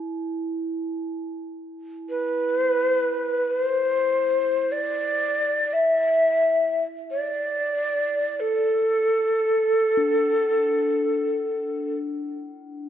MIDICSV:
0, 0, Header, 1, 3, 480
1, 0, Start_track
1, 0, Tempo, 500000
1, 12376, End_track
2, 0, Start_track
2, 0, Title_t, "Flute"
2, 0, Program_c, 0, 73
2, 2003, Note_on_c, 0, 71, 76
2, 3362, Note_on_c, 0, 72, 80
2, 3376, Note_off_c, 0, 71, 0
2, 4522, Note_on_c, 0, 74, 73
2, 4537, Note_off_c, 0, 72, 0
2, 5498, Note_on_c, 0, 76, 83
2, 5513, Note_off_c, 0, 74, 0
2, 6552, Note_off_c, 0, 76, 0
2, 6817, Note_on_c, 0, 74, 72
2, 8057, Note_on_c, 0, 69, 74
2, 8072, Note_off_c, 0, 74, 0
2, 11463, Note_off_c, 0, 69, 0
2, 12376, End_track
3, 0, Start_track
3, 0, Title_t, "Singing bowl"
3, 0, Program_c, 1, 14
3, 0, Note_on_c, 1, 64, 51
3, 6900, Note_off_c, 1, 64, 0
3, 9574, Note_on_c, 1, 62, 46
3, 12376, Note_off_c, 1, 62, 0
3, 12376, End_track
0, 0, End_of_file